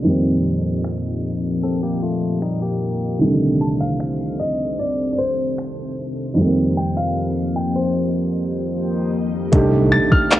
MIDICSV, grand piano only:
0, 0, Header, 1, 2, 480
1, 0, Start_track
1, 0, Tempo, 789474
1, 33, Time_signature, 4, 2, 24, 8
1, 6323, End_track
2, 0, Start_track
2, 0, Title_t, "Grand piano"
2, 0, Program_c, 0, 0
2, 2195, Note_on_c, 0, 81, 89
2, 2225, Note_off_c, 0, 81, 0
2, 2314, Note_on_c, 0, 77, 86
2, 2672, Note_on_c, 0, 75, 79
2, 2684, Note_off_c, 0, 77, 0
2, 2912, Note_on_c, 0, 74, 80
2, 2920, Note_off_c, 0, 75, 0
2, 3104, Note_off_c, 0, 74, 0
2, 3113, Note_on_c, 0, 74, 54
2, 3150, Note_on_c, 0, 72, 88
2, 3155, Note_off_c, 0, 74, 0
2, 3607, Note_off_c, 0, 72, 0
2, 4118, Note_on_c, 0, 79, 87
2, 4237, Note_on_c, 0, 77, 91
2, 4239, Note_off_c, 0, 79, 0
2, 4595, Note_on_c, 0, 79, 90
2, 4606, Note_off_c, 0, 77, 0
2, 4715, Note_on_c, 0, 72, 70
2, 4718, Note_off_c, 0, 79, 0
2, 5530, Note_off_c, 0, 72, 0
2, 6033, Note_on_c, 0, 93, 105
2, 6153, Note_on_c, 0, 89, 102
2, 6157, Note_off_c, 0, 93, 0
2, 6323, Note_off_c, 0, 89, 0
2, 6323, End_track
0, 0, End_of_file